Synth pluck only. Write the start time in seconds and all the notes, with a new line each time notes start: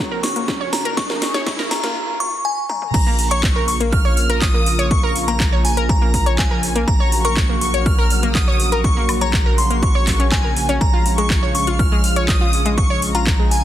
0.11 A#4
0.36 A#3
0.61 C#5
0.85 A#4
1.10 A#3
1.34 C#5
1.59 A#4
1.84 A#3
3.07 A#3
3.31 C#5
3.56 A#4
3.80 A#3
4.05 C#5
4.30 A#4
4.54 A#3
4.79 C#5
5.03 A#4
5.28 A#3
5.53 C#5
5.77 A#4
6.02 A#3
6.26 C#5
6.51 A#4
6.76 A#3
7.00 C#5
7.25 A#4
7.49 A#3
7.74 C#5
7.99 A#4
8.23 A#3
8.48 C#5
8.72 A#4
8.97 A#3
9.21 C#5
9.46 A#4
9.70 A#3
9.95 C#5
10.20 C#4
10.44 A#4
10.69 C#4
10.93 F4
11.18 G#3
11.43 C#5
11.67 F4
11.92 G#3
12.16 C#5
12.41 F4
12.66 G#3
12.90 C#5
13.15 F4
13.39 G#3